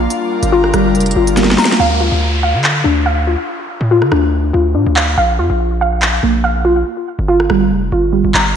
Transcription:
0.00 0.10 A#3 medium
0.00 1.75 D4 medium
0.00 0.10 F4 medium
0.00 1.76 F4 medium
0.00 0.10 F5 loud
0.10 1.78 G3 medium
0.10 1.78 A#4 medium
0.10 closed hi-hat medium
0.43 0.72 G1 loud
0.43 closed hi-hat medium
0.52 1.15 F4 loud
0.64 cross-stick medium
0.74 0.96 G1 loud
0.74 1.35 G3 medium
0.74 cross-stick loud
0.74 closed hi-hat medium
0.95 1.15 F1 loud
0.95 closed hi-hat soft
1.00 closed hi-hat medium
1.06 closed hi-hat medium
1.11 closed hi-hat medium
1.16 1.57 G1 loud
1.16 1.80 F4 medium
1.27 closed hi-hat medium
1.37 1.79 G3 medium
1.37 snare medium
1.37 closed hi-hat medium
1.44 snare medium
1.51 snare medium
1.58 1.79 A#5 medium
1.58 snare medium
1.58 open hi-hat medium
1.65 snare loud
1.72 snare loud
1.79 2.10 D2 loud
1.79 2.42 F5 loud
1.79 downlifter medium
2.00 3.26 F4 medium
2.12 2.55 D2 loud
2.43 3.05 F5 medium
2.54 2.83 D3 loud
2.64 clap loud
2.84 3.36 D2 loud
2.84 4.11 D4 medium
3.06 4.33 F5 loud
3.27 3.90 F4 medium
3.81 4.03 A2 loud
3.91 4.52 F4 loud
4.02 4.11 D3 loud
4.02 cross-stick medium
4.12 4.52 D2 loud
4.12 4.73 D4 medium
4.12 cross-stick loud
4.53 4.77 D2 loud
4.53 5.17 F4 medium
4.75 4.86 A2 loud
4.75 5.17 D4 medium
4.86 5.16 D2 loud
4.96 5.16 F5 medium
4.96 clap loud
5.17 5.40 A#1 loud
5.17 5.80 F5 loud
5.39 5.49 F2 loud
5.39 6.64 F4 medium
5.50 6.20 A#1 loud
5.81 6.43 F5 medium
6.02 clap loud
6.23 6.84 A#1 loud
6.23 6.86 A#3 medium
6.44 6.86 F5 loud
6.65 6.86 F4 medium
7.19 7.49 G1 loud
7.28 7.91 F4 loud
7.40 cross-stick medium
7.50 7.72 G1 loud
7.50 8.12 G3 medium
7.50 cross-stick loud
7.71 7.91 F1 loud
7.92 8.23 G1 loud
7.92 8.56 F4 medium
8.13 8.55 G3 medium
8.24 8.34 G1 loud
8.34 8.55 G1 loud
8.34 8.56 A#5 medium
8.34 clap loud

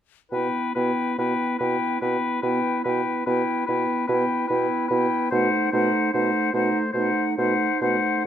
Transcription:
0.31 0.48 B2 soft
0.31 0.76 B3 soft
0.31 0.75 E4 soft
0.31 0.74 B4 soft
0.31 0.75 G5 soft
0.75 0.92 B2 soft
0.75 1.19 B3 soft
0.75 1.18 E4 soft
0.75 1.18 B4 soft
0.75 1.17 G5 soft
1.18 1.34 B2 soft
1.18 1.60 B3 soft
1.18 1.60 E4 soft
1.18 1.58 B4 soft
1.18 1.59 G5 soft
1.58 1.76 B2 soft
1.58 2.01 B3 soft
1.58 2.02 E4 soft
1.58 2.01 B4 soft
1.58 2.01 G5 soft
2.01 2.18 B2 soft
2.01 2.43 B3 soft
2.01 2.43 E4 soft
2.01 2.42 B4 soft
2.01 2.42 G5 soft
2.42 2.59 B2 soft
2.42 2.85 B3 soft
2.42 2.85 E4 soft
2.42 2.84 B4 soft
2.42 2.84 G5 soft
2.84 3.01 B2 soft
2.84 3.26 B3 soft
2.84 3.26 E4 soft
2.84 3.26 B4 soft
2.84 3.26 G5 soft
3.26 3.43 B2 soft
3.26 3.67 B3 soft
3.26 3.68 E4 soft
3.26 3.66 B4 soft
3.26 3.68 G5 soft
3.67 3.84 B2 soft
3.67 4.09 B3 soft
3.67 4.07 E4 soft
3.67 4.07 B4 soft
3.67 4.09 G5 soft
4.08 4.25 B2 soft
4.08 4.49 B3 soft
4.08 4.48 E4 soft
4.08 4.47 B4 soft
4.08 4.50 G5 soft
4.47 4.66 B2 soft
4.47 4.90 B3 soft
4.47 4.90 E4 soft
4.47 4.87 B4 soft
4.47 4.91 G5 soft
4.88 5.07 B2 soft
4.88 5.32 B3 soft
4.88 5.31 E4 soft
4.88 5.30 B4 soft
4.92 5.32 G5 soft
5.31 5.48 B2 medium
5.31 5.72 A3 soft
5.31 5.72 D#4 soft
5.31 5.71 C5 soft
5.31 5.73 F#5 soft
5.72 5.89 B2 soft
5.72 6.13 A3 medium
5.72 6.13 D#4 soft
5.72 6.12 C5 soft
5.72 6.13 F#5 soft
6.13 6.30 B2 soft
6.13 6.53 A3 soft
6.13 6.53 D#4 soft
6.13 6.53 C5 soft
6.13 6.53 F#5 soft
6.53 6.70 B2 soft
6.53 6.94 A3 soft
6.53 6.83 D#4 soft
6.53 6.92 C5 soft
6.53 6.78 F#5 soft
6.93 7.10 B2 soft
6.93 7.36 A3 soft
6.93 7.37 D#4 soft
6.93 7.25 C5 soft
6.97 7.38 F#5 soft
7.38 7.54 B2 soft
7.38 7.69 A3 soft
7.38 7.81 D#4 soft
7.38 7.80 C5 soft
7.38 7.81 F#5 soft
7.81 7.97 B2 soft
7.81 8.25 A3 soft
7.81 8.25 D#4 soft
7.81 8.25 C5 soft
7.81 8.25 F#5 soft

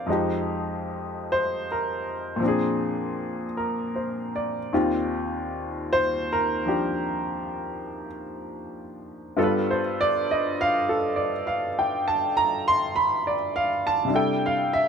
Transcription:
0.00 0.10 F4 soft
0.00 0.31 F5 soft
0.06 2.39 F2 medium
0.06 2.38 F3 soft
0.06 2.41 G#3 soft
0.06 2.41 D#4 soft
0.12 2.42 G4 medium
1.32 1.66 C5 medium
1.72 3.44 A#4 medium
2.36 4.70 A#2 medium
2.36 4.71 F3 soft
2.43 4.73 C4 soft
2.43 4.74 D4 soft
2.48 4.75 G#4 medium
3.57 4.32 A#4 medium
3.96 4.56 C5 soft
4.36 4.96 D5 soft
4.73 9.37 D#2 soft
4.73 9.38 D#3 soft
4.73 9.38 C4 soft
4.73 9.37 F4 medium
4.73 6.67 G4 medium
5.93 6.28 C5 medium
6.33 8.07 A#4 medium
6.66 9.37 F3 soft
6.66 9.38 D4 soft
6.66 9.38 G4 soft
9.37 14.08 G2 medium
9.37 14.06 G3 soft
9.37 14.09 B3 soft
9.37 14.09 F4 medium
9.37 10.88 A4 medium
9.43 9.79 B4 medium
9.71 10.13 C5 medium
10.01 10.26 D5 medium
10.31 10.51 D#5 medium
10.61 10.97 F5 medium
10.89 11.31 A4 medium
11.16 11.43 D5 medium
11.47 11.68 F5 medium
11.79 12.15 G5 medium
12.08 12.50 A5 medium
12.37 12.63 A#5 medium
12.68 12.88 C6 medium
12.96 13.33 B5 medium
13.27 13.68 D5 soft
13.56 13.81 F5 medium
13.87 14.06 A5 medium
14.05 14.88 C3 soft
14.05 14.88 G3 soft
14.10 14.88 D4 soft
14.10 14.88 E4 soft
14.15 14.88 A4 soft
14.15 14.51 G5 medium
14.46 14.86 F5 medium
14.73 14.88 E5 medium

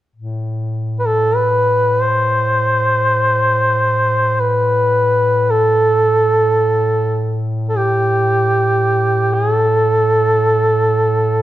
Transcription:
0.15 11.42 A2 soft
1.00 1.08 B4 soft
1.07 1.37 A4 medium
1.36 2.04 B4 medium
2.02 4.42 C5 medium
4.40 5.52 B4 medium
5.51 7.46 A4 medium
7.69 7.79 A4 medium
7.77 9.35 G4 medium
9.33 9.52 G#4 medium
9.52 11.42 A4 medium

